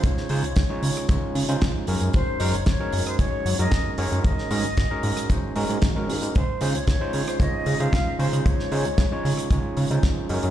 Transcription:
<<
  \new Staff \with { instrumentName = "Flute" } { \time 4/4 \key des \major \tempo 4 = 114 des''2 r2 | c''8. des''16 des''8. c''16 des''8. ees''8. des''8 | ees''2 r2 | c''8. des''16 des''8. c''16 ees''8. f''8. c''8 |
des''2 r2 | }
  \new Staff \with { instrumentName = "Tine electric piano" } { \time 4/4 \key des \major <aes des' ees' f' c''>8 <aes des' ees' f' c''>16 r8 <aes des' ees' f' des''>8. <aes des' ees' f' des''>8. <aes des' ees' f' c''>8. <aes des' ees' ges' bes'>8~ | <aes des' ees' ges' bes'>8 <aes des' ees' ges' bes'>16 r8 <aes des' ees' ges' bes'>8. <aes des' ees' ges' des''>8. <aes des' ees' ges' bes'>8. <aes des' ees' ges' bes'>8~ | <aes des' ees' ges' bes'>8 <aes des' ees' ges' bes'>16 r8 <aes des' ees' ges' bes'>8. <aes des' ees' ges' c''>8 <aes des' ees' ges' bes'>8 r16 <aes des' ees' ges' bes'>8. | r8 <aes des' ees' f' c''>16 r8 <aes des' ees' f' c''>8. <aes des' ees' f' des''>8. <aes des' ees' f' c''>8. <aes des' ees' f' c''>8~ |
<aes des' ees' f' c''>8 <aes des' ees' f' c''>16 r8 <aes des' ees' f' des''>8. <aes des' ees' f' des''>8. <aes des' ees' f' c''>8. <aes des' ees' ges' bes'>8 | }
  \new Staff \with { instrumentName = "Analog synth bass" } { \clef bass \time 4/4 \key des \major des,16 r16 des16 des,16 des,16 r16 des16 r16 des,16 r16 des16 des16 des,16 r16 ges,16 ges,16 | ges,,16 r16 ges,16 ges,,16 ges,,16 r16 ges,16 r16 ges,,16 r16 ges,16 ges,16 ges,,16 r16 ges,16 ges,16 | aes,,16 r16 aes,16 aes,,16 aes,,16 r16 aes,16 r16 aes,,16 r16 aes,16 aes,16 aes,,8 aes,16 aes,16 | des,16 r16 des16 des,16 des,16 r16 des16 r16 des,16 r16 des16 des16 des,16 r16 des16 des16 |
des,16 r16 des16 des,16 des,16 r16 des16 r16 des,16 r16 des16 des16 des,16 r16 ges,16 ges,16 | }
  \new DrumStaff \with { instrumentName = "Drums" } \drummode { \time 4/4 <hh bd>16 sn16 hho16 hh16 <hh bd sn>8 hho16 <hh ss>16 <hh bd>8 hho16 hh16 <hh bd sn>8 hho16 hh16 | <hh bd>8 hho16 hh16 <hh bd sn>8 hho16 <hh ss>16 <hh bd>8 hho16 hh16 <hh bd sn>8 hho16 hh16 | <hh bd>16 sn16 hho16 hh16 <hh bd sn>8 hho16 <hh ss>16 <hh bd>8 hho16 hh16 <hh bd sn>8 hho16 hh16 | <hh bd>8 hho16 hh16 <hh bd sn>8 hho16 <hh ss>16 <hh bd>8 hho16 hh16 <hh bd sn>8 hho16 hh16 |
<hh bd>16 sn16 hho16 hh16 <hh bd sn>8 hho16 <hh ss>16 <hh bd>8 hho16 hh16 <hh bd sn>8 hho16 hh16 | }
>>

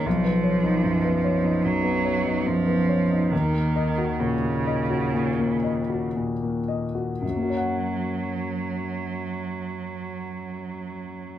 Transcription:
<<
  \new Staff \with { instrumentName = "Grand piano" } { \time 4/4 \key fis \major \tempo 4 = 62 b,,16 b16 cis''16 dis'16 fis,16 b16 cis''16 dis'16 fis,16 b16 cis''16 dis'16 fis,16 b16 cis''16 dis'16 | dis,16 ais16 dis''16 fis'16 ais,16 ais16 dis''16 fis'16 ais,16 ais16 dis''16 fis'16 ais,16 ais16 dis''16 fis'16 | <fis, fis ais fis' cis'' fis''>1 | }
  \new Staff \with { instrumentName = "Cello" } { \clef bass \time 4/4 \key fis \major eis2 fis4 eis4 | dis4 cis2 r4 | fis1 | }
>>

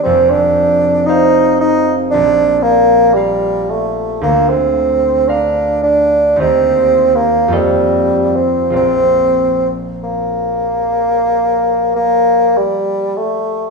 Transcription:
<<
  \new Staff \with { instrumentName = "Harp" } { \time 4/4 \key bes \major \tempo 4 = 54 <f,, f, c''>4 <c'' f''>4 bes,,4 <bes' f''>4 | d,4 <bes' f''>4 <ees, g' bes' ees''>4 <f, f' a' ees''>4 | <bes,, f' bes' d''>1 | }
  \new Staff \with { instrumentName = "Bassoon" } { \time 4/4 \key bes \major c'16 d'8. ees'8 ees'16 r16 d'8 bes8 g8 a8 | bes16 c'8. d'8 d'8 \tuplet 3/2 { c'4 bes8 g4 c'8 } | c'8. r16 bes4. bes8 g8 a8 | }
>>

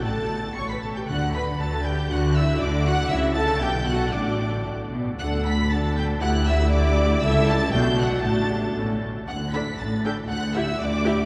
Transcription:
<<
  \new Staff \with { instrumentName = "Violin section" } { \time 2/4 \key d \major \tempo 4 = 118 a'''4 cis''''16 b'''16 a'''16 g'''16 | fis'''8 b'''8 a'''8 g'''8 | fis'''8 e'''8 d'''8 fis'''8 | e'''8 a'''8 g'''8 fis'''8 |
d'''4 r4 | fis'''8 b'''8 a'''8 g'''8 | fis'''8 e'''8 d'''4 | e'''8 a'''8 g'''8 fis'''8 |
a'''4 r4 | fis'''8 b'''8 a'''8 g'''8 | fis'''8 e'''8 d'''4 | }
  \new Staff \with { instrumentName = "Violin section" } { \time 2/4 \key d \major a''4 cis'''16 b''16 a''16 g''16 | fis''8 b''8 a''8 g''8 | fis''8 e''8 d''8 fis''8 | e''8 a''8 g''8 fis''8 |
d''4 r4 | fis''8 b''8 a''8 g''8 | fis''8 e''8 d''4 | e''8 a''8 g''8 fis''8 |
a''4 r4 | fis''8 b''8 a''8 g''8 | fis''8 e''8 d''4 | }
  \new Staff \with { instrumentName = "Viola section" } { \time 2/4 \key d \major << { a'4 cis''16 b'16 a'16 g'16 | fis'8 b'8 a'8 g'8 | fis'8 e'8 d'8 fis'8 | e'8 a'8 g'8 fis'8 |
d'4 r4 | a'4 a'4 | g'4 g'4 | a'4 fis'4 |
fis'8 g'8 a'8 r8 | r8 a'16 r8. a'16 r16 | r8 g'16 r8. g'16 r16 | } \\ { r2 | r2 | r2 | r2 |
r2 | d'4 d'4 | e'4 e'4 | e'4 d'4 |
d'4 cis'8 r8 | r8 d'16 r8. d'16 r16 | r8 e'16 r8. e'16 r16 | } >> }
  \new Staff \with { instrumentName = "Cello section" } { \clef bass \time 2/4 \key d \major a,4 a,8 r8 | d4 d4 | d4 d4 | cis4 b,4 |
a,4 a,8 b,8 | d,2 | d,2 | cis,4 b,4 |
a,4 a,8 r8 | d,4 a,4 | d,4 d,4 | }
  \new Staff \with { instrumentName = "Double bass section" } { \clef bass \time 2/4 \key d \major a,,4 a,,8 r8 | d,4 d,4 | d,4 d,4 | cis,4 b,,4 |
a,,4. r8 | d,2 | d,2 | cis,4 b,,4 |
a,,4 a,,8 r8 | d,4 a,,4 | d,4 d,4 | }
>>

